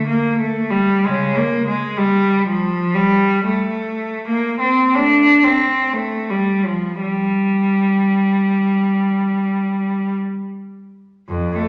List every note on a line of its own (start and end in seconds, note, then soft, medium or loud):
0.07 0.40 A#3 medium
0.38 0.72 A3 medium
0.71 1.05 G3 medium
1.05 1.36 C#3 medium
1.05 1.38 G#3 medium
1.36 1.69 A#3 medium
1.67 2.00 G#3 medium
1.98 2.48 G3 medium
2.48 2.97 F3 medium
2.95 3.45 G3 medium
3.45 4.25 A3 medium
4.28 4.60 A#3 medium
4.60 4.93 C4 medium
4.95 5.41 A3 medium
4.95 5.45 D4 medium
5.44 5.95 C4 medium
5.94 6.29 A3 medium
6.30 6.65 G3 medium
6.65 7.01 F3 soft
7.02 10.16 G3 medium
11.28 11.55 F2 soft
11.53 11.68 A3 medium